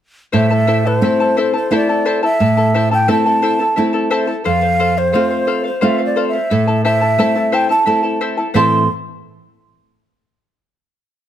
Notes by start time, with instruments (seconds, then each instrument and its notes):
0.32 nylon-string guitar A2, charango E4 A4 C5 E5 A5, quena E5
0.51 charango E4 A4 A5
0.67 charango E4 A4 C5 E5 A5
0.85 charango E4 A4 A5, quena B4
1.00 nylon-string guitar A3 C4 E4, charango E4 E5, quena C5
1.04 charango A4 A5
1.20 charango E4 A4 A5
1.37 charango E4 A4 C5 E5 A5
1.54 charango E4 A4 A5, quena C5
1.71 nylon-string guitar A3 C4 E4, charango E4 A4 C5 E5 A5
1.75 quena D5
1.89 charango E4 A4 A5
2.05 charango E4 A4 C5 E5 A5
2.23 charango E4 A4 A5, quena E5
2.40 nylon-string guitar A2, charango E4 A4 E5 A5
2.57 charango E4 A4 A5
2.74 charango E4 A4 C5 E5 A5
2.91 charango E4 A4 A5, quena G5
3.08 nylon-string guitar A3 C4 E4, charango E4 A4 C5 E5 A5, quena A5
3.26 charango E4 A4 A5
3.42 charango E4 A4 C5 E5 A5
3.60 charango E4 A4 A5
3.76 nylon-string guitar A3 C4 E4, charango E4 A4 E5 A5
3.93 charango E4 A4 A5
4.10 charango E4 A4 C5 E5 A5
4.27 charango E4 A4 A5
4.44 nylon-string guitar F2, charango A4 C5 F5, quena F5
4.61 charango C5 F5
4.79 charango A4 C5 F5
4.96 quena C5, charango C5 F5
5.13 nylon-string guitar A3 C4 F4, charango A4 C5 F5
5.31 charango C5 F5
5.47 charango A4 C5 F5
5.64 charango C5 F5, quena C5
5.81 nylon-string guitar A3 C4 F4, charango A4 C5 F5, quena E5
5.98 charango C5 F5
6.06 quena D5
6.16 charango A4 C5 F5
6.28 quena E5
6.33 charango C5 F5
6.50 nylon-string guitar A2, charango E4 A4 E5 A5
6.67 charango E4 A4 A5
6.84 charango E4 A4 C5 E5 A5, quena E5
7.01 charango E4 A4 A5
7.18 nylon-string guitar A3 C4 E4, charango E4 A4 C5 E5 A5
7.35 charango E4 A4 A5
7.52 charango E4 A4 C5 E5 A5, quena G5
7.69 charango E4 A4 A5, quena A5
7.86 nylon-string guitar A3 C4 E4, charango E4 A4 E5 A5
8.03 charango E4 A4 A5
8.21 charango E4 A4 C5 E5 A5
8.37 charango E4 A4 A5
8.54 nylon-string guitar A2 E3 C4 A4 E5 A5, charango E4 A4 C5 E5 A5, quena C6